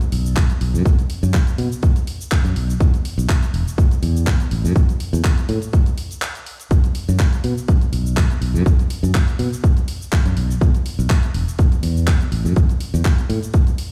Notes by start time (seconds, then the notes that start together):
0.01 muted fingered electric bass stroke, closed hi-hat, shaker
0.12 B1, open hi-hat
0.26 shaker
0.36 kick, clap, closed hi-hat, shaker
0.50 closed hi-hat, shaker
0.61 B1, open hi-hat
0.74 F#2, shaker
0.85 B1, kick, closed hi-hat, shaker
0.99 closed hi-hat, shaker
1.10 open hi-hat
1.23 F#2, shaker
1.34 kick, clap, closed hi-hat, shaker
1.47 closed hi-hat, shaker
1.58 B2, open hi-hat
1.72 shaker
1.83 kick, closed hi-hat, shaker
1.96 closed hi-hat, shaker
2.07 open hi-hat
2.21 shaker
2.31 muted fingered electric bass stroke, kick, clap, closed hi-hat, shaker
2.45 F#2, closed hi-hat, shaker
2.56 B1, open hi-hat
2.70 shaker
2.80 E2, kick, closed hi-hat, shaker
2.94 closed hi-hat, shaker
3.05 open hi-hat
3.18 B1, shaker
3.29 kick, clap, closed hi-hat, shaker
3.43 closed hi-hat, shaker
3.54 E1, open hi-hat
3.68 shaker
3.78 B1, kick, closed hi-hat, shaker
3.91 muted fingered electric bass stroke, closed hi-hat, shaker
4.03 E2, open hi-hat
4.17 shaker
4.27 kick, clap, closed hi-hat, shaker
4.40 closed hi-hat, shaker
4.51 A1, open hi-hat
4.65 F#2, shaker
4.76 A1, kick, closed hi-hat, shaker
4.89 closed hi-hat, shaker
5.00 open hi-hat
5.13 E2, closed hi-hat, shaker
5.24 kick, clap, closed hi-hat, shaker
5.38 closed hi-hat, shaker
5.49 A2, open hi-hat
5.62 closed hi-hat, shaker
5.73 kick, closed hi-hat, shaker
5.86 closed hi-hat, shaker
5.98 open hi-hat
6.11 closed hi-hat, shaker
6.22 clap, closed hi-hat, shaker
6.35 closed hi-hat, shaker
6.46 open hi-hat
6.60 closed hi-hat, shaker
6.71 B1, kick, closed hi-hat, shaker
6.84 closed hi-hat, shaker
6.95 open hi-hat
7.09 F#2, shaker
7.19 kick, clap, closed hi-hat, shaker
7.33 closed hi-hat, shaker
7.44 B2, open hi-hat
7.58 shaker
7.68 F#2, kick, closed hi-hat, shaker
7.81 muted fingered electric bass stroke, closed hi-hat, shaker
7.93 B1, open hi-hat
8.06 shaker
8.17 kick, clap, closed hi-hat, shaker
8.30 closed hi-hat, shaker
8.41 B1, open hi-hat
8.54 F#2, shaker
8.66 B1, kick, closed hi-hat, shaker
8.79 closed hi-hat, shaker
8.90 open hi-hat
9.03 F#2, shaker
9.15 kick, clap, closed hi-hat, shaker
9.28 closed hi-hat, shaker
9.39 B2, open hi-hat
9.53 shaker
9.64 kick, closed hi-hat, shaker
9.77 closed hi-hat, shaker
9.88 open hi-hat
10.02 shaker
10.12 muted fingered electric bass stroke, kick, clap, closed hi-hat, shaker
10.26 F#2, closed hi-hat, shaker
10.37 B1, open hi-hat
10.51 shaker
10.61 E2, kick, closed hi-hat, shaker
10.75 closed hi-hat, shaker
10.86 open hi-hat
10.99 B1, shaker
11.10 kick, clap, shaker
11.23 closed hi-hat, shaker
11.34 E1, open hi-hat
11.48 shaker
11.59 B1, kick, closed hi-hat, shaker
11.72 muted fingered electric bass stroke, closed hi-hat, shaker
11.83 E2, open hi-hat
11.97 shaker
12.07 kick, clap, closed hi-hat, shaker
12.21 closed hi-hat, shaker
12.32 A1, open hi-hat
12.45 F#2, shaker
12.56 A1, kick, closed hi-hat, shaker
12.69 closed hi-hat, shaker
12.80 open hi-hat
12.94 E2, shaker
13.05 kick, clap, closed hi-hat, shaker
13.18 closed hi-hat, shaker
13.29 A2, open hi-hat
13.43 closed hi-hat, shaker
13.54 kick, closed hi-hat, shaker
13.67 closed hi-hat, shaker
13.78 open hi-hat